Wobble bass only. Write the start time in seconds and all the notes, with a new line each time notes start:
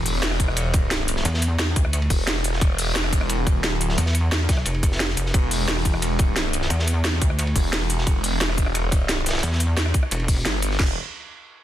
1.25 E2
1.76 D2
3.98 E2
4.49 B1
4.66 F1
5.17 F1
6.70 E2
7.22 D2
9.43 E2
10.11 E1